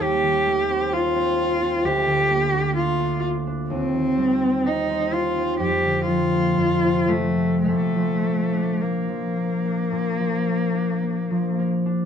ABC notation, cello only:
X:1
M:4/4
L:1/8
Q:1/4=63
K:Bb
V:1 name="Cello"
G2 F2 G2 F z | C2 E F G F2 A, | A,2 B,4- B, z |]